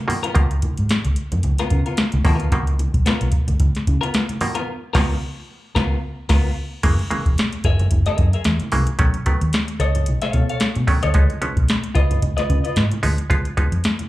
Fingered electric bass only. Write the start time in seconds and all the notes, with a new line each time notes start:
0.36 C#2
0.79 G#2
0.90 muted fingered electric bass stroke
1.05 C#2
1.32 F2
1.44 C#2
1.71 C#3
2.14 C#2
2.25 D#2
2.40 D2
2.52 C#2
2.94 B1
3.21 B1
3.48 C#2
3.60 C#2
3.88 C#3
4.95 C#2
5.76 C#2
6.29 C#2
6.84 F#1
7.26 E1
7.64 F#1
7.92 F#1
8.19 F#2
8.46 E2
8.73 C2
9.00 B1
9.42 D#2
9.79 C#2
10.08 B1
10.34 B2
10.76 B2
11.04 D2
11.14 C#2
11.57 B1
11.95 C#2
12.23 C#2
12.50 C#3
12.76 G#2
13.04 D2
13.31 C#2
13.72 F2